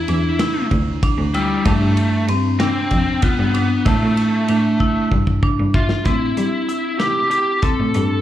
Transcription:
Already playing: lead electric guitar E4
0.08 cello E2, marimba D4, ride
0.39 marimba E4, snare, ride
0.71 cello D2, kick, ride
1.03 marimba D4, kick, ride
1.18 cello D2
1.34 lead electric guitar G3, marimba E4, ride
1.65 cello G2, lead electric guitar A3, marimba D4, kick, ride
1.80 cello G2
1.97 ride
2.28 cello G2, marimba C4, ride
2.59 lead electric guitar C4, marimba D4, snare, ride
2.91 cello F2, kick, snare, ride
3.22 lead electric guitar B3, marimba F4, kick, ride
3.39 cello G2
3.54 marimba D4, ride
3.86 cello A2, lead electric guitar A3, marimba E4, kick, ride
4.02 cello A2
4.17 snare, ride
4.48 cello A2, marimba D4, ride
4.80 marimba E4, kick
5.12 cello G2, kick
5.27 kick
5.43 marimba D4, kick
5.59 cello G2
5.74 lead electric guitar F4, marimba E5, kick
5.89 snare
6.05 cello A2, marimba C4, lead electric guitar E4, kick, closed hi-hat
6.37 cello G3, closed hi-hat
6.69 marimba E4, closed hi-hat
6.99 marimba E4, lead electric guitar G4, snare, closed hi-hat
7.31 lead electric guitar G4, closed hi-hat
7.62 marimba C4, lead electric guitar A4, kick, closed hi-hat
7.79 cello A2
7.94 cello G2, marimba D4, closed hi-hat

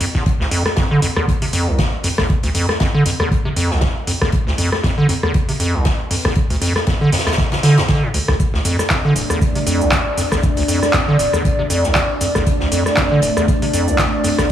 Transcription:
0.01 acid bass F2, closed hi-hat, open hi-hat
0.14 acid bass E2, kick, snare
0.26 kick, closed hi-hat
0.40 acid bass D2, snare
0.51 acid bass F2, closed hi-hat, open hi-hat
0.65 cross-stick, snare
0.76 acid bass F2, kick, snare, closed hi-hat
0.91 acid bass D3
1.02 acid bass F2, closed hi-hat, open hi-hat
1.16 acid bass E2, cross-stick
1.28 kick, closed hi-hat
1.42 acid bass C3, open hi-hat
1.53 acid bass F2, closed hi-hat, open hi-hat
1.67 acid bass C2
1.78 acid bass E2, kick, snare, closed hi-hat
2.03 acid bass F2, open hi-hat
2.18 acid bass E2, kick, cross-stick, snare
2.29 kick, closed hi-hat
2.43 acid bass D2, closed hi-hat, open hi-hat
2.55 acid bass F2, closed hi-hat, open hi-hat
2.69 cross-stick, snare
2.80 acid bass F2, kick, snare, closed hi-hat
2.94 acid bass D3
3.06 acid bass F2, closed hi-hat, open hi-hat
3.20 acid bass E2, cross-stick
3.31 kick, closed hi-hat
3.45 acid bass C3
3.56 acid bass F2, closed hi-hat, open hi-hat
3.71 acid bass C2, snare
3.81 acid bass E2, kick, snare, closed hi-hat
4.07 acid bass F2, closed hi-hat, open hi-hat
4.22 acid bass E2, kick, cross-stick, snare
4.32 kick, closed hi-hat
4.47 acid bass D2, snare
4.58 acid bass F2, closed hi-hat, open hi-hat
4.72 cross-stick, snare
4.83 acid bass F2, kick, snare, closed hi-hat
4.98 acid bass D3
5.09 acid bass F2, closed hi-hat, open hi-hat
5.23 acid bass E2, cross-stick
5.34 kick, closed hi-hat
5.49 acid bass C3, open hi-hat
5.60 acid bass F2, closed hi-hat, open hi-hat
5.74 acid bass C2
5.85 acid bass E2, kick, snare, closed hi-hat
6.11 acid bass F2, open hi-hat
6.25 acid bass E2, kick, cross-stick, snare
6.35 kick, closed hi-hat
6.50 acid bass D2, closed hi-hat, open hi-hat
6.62 acid bass F2, closed hi-hat, open hi-hat
6.76 cross-stick, snare
6.87 acid bass F2, kick, snare, closed hi-hat
7.01 acid bass D3
7.12 acid bass F2, snare, closed hi-hat, open hi-hat
7.19 snare, closed hi-hat
7.27 acid bass E2, cross-stick, snare, closed hi-hat
7.33 snare, closed hi-hat
7.38 kick, snare, closed hi-hat
7.52 acid bass C3, snare, closed hi-hat
7.63 acid bass D3, snare, closed hi-hat, open hi-hat
7.77 acid bass D2, snare, closed hi-hat
7.88 acid bass D3, kick, snare, closed hi-hat
8.03 acid bass A2
8.14 acid bass D2, closed hi-hat, open hi-hat
8.28 acid bass D2, kick, cross-stick, snare
8.40 ambient pad A3 D4 D5, kick, closed hi-hat, cabasa
8.54 acid bass D2, snare
8.65 acid bass F2, closed hi-hat, open hi-hat, cabasa
8.79 cross-stick, snare, cabasa
8.90 acid bass F2, kick, snare, clap, closed hi-hat, cabasa
9.05 acid bass D3
9.15 acid bass D1, closed hi-hat, open hi-hat, cabasa
9.30 acid bass E2, cross-stick, cabasa
9.41 kick, closed hi-hat, cabasa
9.55 acid bass C3, open hi-hat
9.66 acid bass F2, closed hi-hat, open hi-hat, cabasa
9.81 acid bass C2, cabasa
9.92 acid bass E2, kick, snare, clap, closed hi-hat, cabasa
10.17 acid bass F2, open hi-hat, cabasa
10.32 acid bass E2, kick, cross-stick, snare, cabasa
10.43 kick, closed hi-hat, cabasa
10.57 acid bass D2, closed hi-hat, open hi-hat
10.68 acid bass F2, closed hi-hat, open hi-hat, cabasa
10.83 cross-stick, snare, cabasa
10.93 acid bass F2, kick, snare, clap, closed hi-hat, cabasa
11.08 acid bass D3
11.19 acid bass D1, closed hi-hat, open hi-hat, cabasa
11.33 acid bass E2, cross-stick, cabasa
11.45 kick, closed hi-hat, cabasa
11.59 acid bass C3
11.70 acid bass F2, closed hi-hat, open hi-hat, cabasa
11.84 acid bass C2, snare, cabasa
11.95 acid bass E2, kick, snare, clap, closed hi-hat, cabasa
12.21 acid bass F2, closed hi-hat, open hi-hat, cabasa
12.35 acid bass E2, kick, cross-stick, snare, cabasa
12.46 kick, closed hi-hat, cabasa
12.60 acid bass D2, snare
12.72 acid bass F2, closed hi-hat, open hi-hat, cabasa
12.86 cross-stick, snare, cabasa
12.97 acid bass F2, kick, snare, clap, closed hi-hat, cabasa
13.11 acid bass D3
13.22 acid bass D1, closed hi-hat, open hi-hat, cabasa
13.37 acid bass E2, cross-stick, cabasa
13.48 kick, closed hi-hat, cabasa
13.62 acid bass C3, open hi-hat
13.73 acid bass F2, closed hi-hat, open hi-hat, cabasa
13.88 acid bass C2, cabasa
13.98 acid bass E2, kick, snare, clap, closed hi-hat, cabasa
14.24 acid bass F2, open hi-hat, cabasa
14.38 acid bass E2, kick, cross-stick, snare, cabasa

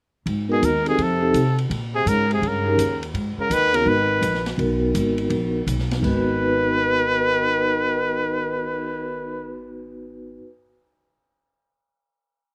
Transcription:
0.26 upright bass G#2, kick, ride
0.48 trombone B2, vibraphone B3 D#4 F#4 A#4, trumpet G#4
0.62 upright bass D#2, trombone D#3, trumpet A#4, kick, hi-hat pedal, ride
0.84 trombone B2, vibraphone C4 D#4 G4 A4, trumpet G#4, ride
0.98 upright bass F2, trombone C3, kick, ride
1.03 trumpet A4
1.21 vibraphone C4 D#4 G4 A4
1.34 upright bass C3, kick, hi-hat pedal, ride
1.58 ride
1.70 upright bass A#2, kick, ride
1.94 trombone C3, trumpet G#4
2.06 upright bass G#2, trombone C#3, trumpet A#4, kick, hi-hat pedal, ride
2.30 trombone C3, trumpet G#4, ride
2.42 upright bass G2, trombone C#3, kick, ride
2.48 trumpet A#4
2.65 vibraphone C#4 D#4 G4 A#4
2.77 upright bass D#2, kick, hi-hat pedal, ride
3.03 ride
3.14 upright bass G#2, kick, ride
3.38 trombone C#3, trumpet A#4, muted upright bass stroke
3.50 upright bass D#2, trombone D#3, trumpet B4, kick, hi-hat pedal, ride
3.72 trombone C#3, vibraphone B3 D#4 F#4 A#4, trumpet A#4, ride
3.86 upright bass G#1, trombone D#3, trumpet B4, kick
4.22 upright bass A#1, kick, hi-hat pedal, ride
4.34 snare
4.46 snare, ride
4.57 upright bass B1, vibraphone B3 D#4 F#4 A#4, kick, ride
4.94 upright bass G#1, kick, hi-hat pedal, ride
5.18 ride
5.30 upright bass A#1, kick, ride
5.67 upright bass B1, kick, hi-hat pedal, ride
5.79 snare
5.90 vibraphone B3, snare, ride
5.98 vibraphone D#4
6.02 upright bass G#1, trombone D#3, trumpet B4, kick, crash
6.06 vibraphone F#4
6.15 vibraphone B4
6.28 cymbal swell

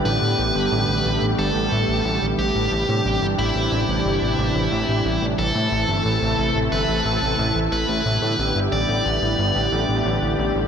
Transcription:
Already playing: analog synth pad D3 G3 B3 G4
0.05 analog synth bass A1, analog synth pad A3, lead electric guitar B4
0.22 analog synth bass A2
0.38 analog synth bass A1
0.55 analog synth bass G1
0.72 analog synth bass A1
0.89 analog synth bass A1
1.05 analog synth bass A1
1.22 analog synth bass A1
1.39 analog synth bass G1, lead electric guitar A4
1.55 analog synth bass A1
1.72 analog synth bass A1
1.88 analog synth bass A1
2.05 analog synth bass A1
2.22 analog synth bass A1
2.38 analog synth bass A1, lead electric guitar G4
2.55 analog synth bass A1
2.72 analog synth bass A1, analog synth pad C3 E3 D4 G4
2.89 analog synth bass A2
3.05 analog synth bass A1
3.22 analog synth bass G1
3.38 analog synth bass A1, lead electric guitar E4
3.55 analog synth bass A1
3.72 analog synth bass A1
3.88 analog synth bass A1
4.05 analog synth bass G1
4.22 analog synth bass A1
4.38 analog synth bass A1
4.55 analog synth bass A1
4.72 analog synth bass A1
4.88 analog synth bass A1
5.05 analog synth bass A1
5.22 analog synth bass A1
5.38 analog synth bass A1, analog synth pad C3 A3 E4 A4, lead electric guitar A4
5.55 analog synth bass A2
5.72 analog synth bass A1
5.88 analog synth bass G1
6.05 analog synth bass A1
6.22 analog synth bass A1
6.39 analog synth bass A1
6.55 analog synth bass A1
6.72 analog synth bass G1, lead electric guitar B4
6.89 analog synth bass A1
7.05 analog synth bass A1
7.22 analog synth bass A1
7.39 analog synth bass A1
7.55 analog synth bass A1
7.72 analog synth bass A1, lead electric guitar B4
7.89 analog synth bass A1
8.05 analog synth bass A1, analog synth pad D3 G3 B3 G4
8.22 analog synth bass A2
8.39 analog synth bass A1
8.55 analog synth bass G1
8.72 analog synth bass A1, lead electric guitar D5
8.89 analog synth bass A1
9.05 analog synth bass A1
9.22 analog synth bass A1
9.39 analog synth bass G1
9.55 analog synth bass A1
9.72 analog synth bass A1
9.89 analog synth bass A1
10.05 analog synth bass A1
10.22 analog synth bass A1
10.39 analog synth bass A1
10.55 analog synth bass A1

